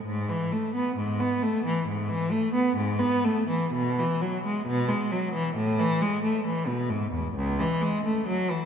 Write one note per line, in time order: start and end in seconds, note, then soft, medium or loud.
0.05 0.27 G#2 medium
0.29 0.51 E3 medium
0.52 0.74 A3 medium
0.75 0.96 B3 medium
0.96 1.19 G#2 medium
1.20 1.42 B3 medium
1.42 1.64 A3 medium
1.65 1.86 E3 medium
1.88 2.09 G#2 medium
2.09 2.31 E3 medium
2.31 2.53 A3 medium
2.54 2.76 B3 medium
2.76 2.99 G#2 medium
2.99 3.23 B3 medium
3.24 3.47 A3 medium
3.48 3.72 E3 medium
3.72 3.96 B2 medium
3.99 4.21 E3 medium
4.22 4.43 F#3 medium
4.45 4.66 G#3 medium
4.66 4.88 B2 loud
4.88 5.10 G#3 medium
5.11 5.33 F#3 medium
5.33 5.55 E3 medium
5.56 5.77 A2 medium
5.79 6.00 E3 loud
6.01 6.23 G#3 medium
6.23 6.44 A3 medium
6.45 6.66 E3 medium
6.67 6.89 B2 medium
6.90 7.12 G#2 medium
7.12 7.34 E2 medium
7.34 7.57 C#2 medium
7.59 7.81 E3 medium
7.81 8.04 G#3 medium
8.05 8.27 A3 medium
8.27 8.49 F#3 medium
8.50 8.65 E3 medium